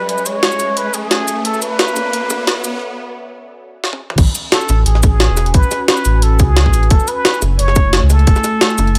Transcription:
Already playing: C#4 B4 E5 G#5, riser
0.09 B4, closed hi-hat
0.18 shaker
0.26 C#5, closed hi-hat, shaker
0.43 snare, closed hi-hat
0.52 shaker
0.60 closed hi-hat, shaker
0.77 B4, closed hi-hat
0.94 G#4, closed hi-hat, shaker
1.11 snare, closed hi-hat
1.28 B3 F#4 A4 C#5 D5 E5, closed hi-hat, shaker
1.45 A4, closed hi-hat
1.54 shaker
1.62 B4, closed hi-hat, shaker
1.79 snare, closed hi-hat
1.88 shaker
1.96 closed hi-hat, high bongo, shaker
2.13 closed hi-hat
2.30 closed hi-hat, high bongo, shaker
2.47 snare, closed hi-hat
2.64 closed hi-hat, shaker
3.84 snare
3.93 high tom
4.10 mid tom
4.18 A1 C#4 F#4 B4 G#5, kick, closed hi-hat, crash
4.27 shaker
4.35 closed hi-hat, shaker
4.52 A4, snare, closed hi-hat
4.61 shaker
4.69 A1, closed hi-hat, high bongo, shaker
4.86 A1 G#4, closed hi-hat
4.95 snare
5.03 G#4, kick, closed hi-hat, high bongo, shaker
5.20 snare, closed hi-hat
5.29 E1
5.37 snare, closed hi-hat, shaker
5.46 closed hi-hat
5.54 A1 B4, kick, closed hi-hat
5.63 shaker
5.71 snare, closed hi-hat, shaker
5.88 B4, snare, closed hi-hat
5.97 shaker
6.05 A1, closed hi-hat, shaker
6.22 A4, closed hi-hat
6.39 C#2 G#4, kick, closed hi-hat, shaker
6.57 snare, closed hi-hat
6.66 A1, kick
6.74 closed hi-hat, shaker
6.83 closed hi-hat
6.90 F#1 A3 E4 A4, kick, closed hi-hat
7.00 shaker
7.08 B4, closed hi-hat, shaker
7.25 snare, closed hi-hat
7.34 shaker
7.42 F#1, closed hi-hat, high bongo, shaker
7.59 F#1 C#5, closed hi-hat
7.68 snare
7.76 kick, closed hi-hat, high bongo, shaker
7.93 snare, closed hi-hat
8.02 C#2
8.10 A4, snare, closed hi-hat, shaker
8.19 closed hi-hat
8.27 F#1, kick, closed hi-hat
8.36 snare, shaker
8.44 snare, closed hi-hat, shaker
8.61 snare, closed hi-hat
8.70 shaker
8.78 F#1, closed hi-hat, high bongo, shaker
8.87 closed hi-hat
8.95 closed hi-hat

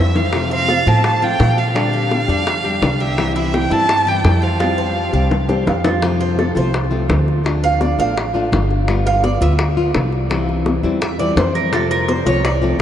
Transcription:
Already playing: F2 E3 E5
0.00 G3 C4 E4
0.16 F5, low bongo
0.33 C3 F3 A3 C4 F4, high bongo
0.50 C4 F5, high bongo
0.69 F4, high bongo
0.86 A2 F3 A3 C4 F4 A5, high bongo
1.04 A5, muted nylon-string guitar stroke, high bongo
1.22 F3 A3 C4 F4 G5
1.39 A#2 F3 A3 C4 F4, high bongo, low bongo
1.57 G4 F5, high bongo
1.75 D3 G3 D4 G4, high bongo
1.93 G4, high bongo
2.11 high bongo
2.28 F2 G3 D4 G4 D5, high bongo
2.46 muted nylon-string guitar stroke, high bongo
2.64 G3 D4 G4
2.82 C2 D3 G3 D4 G4 D5, high bongo, low bongo
3.00 G4 E5, high bongo
3.18 C3 E3 G3 C4 E4, high bongo
3.36 E4 E5, high bongo
3.54 G4 G5, high bongo
3.70 G2 E3 G3 C4 E4 A5, high bongo
3.88 muted nylon-string guitar stroke, high bongo
4.06 E3 G3 C4 E4 G4 G5
4.24 F2 E3 G3 C4 E4, high bongo, low bongo
4.42 C5 F5, high bongo
4.59 F3 G3 C4 F4 G4, high bongo
4.78 C5
5.13 C2 G3 C4 G4 F5
5.31 muted nylon-string guitar stroke, low bongo
5.49 G3 C4 G4 C5, low bongo
5.65 F2 F3 G3 C4 G4 F5, low bongo
5.84 F4, low bongo
6.02 C3 F3 A3 C4 F4, high bongo
6.21 C5, high bongo
6.39 A4, high bongo
6.55 C2 F3 A3 C4 F4 C5, high bongo
6.73 muted nylon-string guitar stroke, high bongo
6.91 F3 A3 C4 F4
7.09 D2 F3 A3 C4 F4, high bongo, low bongo
7.28 high bongo
7.44 D3 A3 D4 F4, high bongo
7.64 F5, high bongo
7.81 D5, high bongo
7.98 A1 A3 D4 F4 F5, high bongo
8.17 muted nylon-string guitar stroke, high bongo
8.34 A3 D4 F4
8.52 G1 D3 A3 D4 F4, high bongo, low bongo
8.71 high bongo
8.88 G3 B3 F4, high bongo
9.06 F5, high bongo
9.24 D5, high bongo
9.41 D2 B3 F4 E5, high bongo
9.59 muted nylon-string guitar stroke, high bongo
9.77 B3 F4
9.95 C2 G3 B3 F4, high bongo, low bongo
10.12 high bongo
10.30 C3 E3 G3 C4 E4, high bongo
10.49 high bongo
10.66 high bongo
10.83 E2 E3 G3 C4 E4, high bongo
11.02 E5, muted nylon-string guitar stroke, high bongo
11.19 E3 G3 C4 E4 D5
11.36 F2 E3 G3 C4 E4 C5, high bongo, low bongo
11.55 A#4, high bongo
11.72 C3 F3 A3 C4 F4 A4, high bongo
11.91 A#4, high bongo
12.08 C5, high bongo
12.26 C2 F3 A3 C4 F4 C#5, high bongo
12.44 D5, muted nylon-string guitar stroke, high bongo
12.62 F3 A3 C4 F4

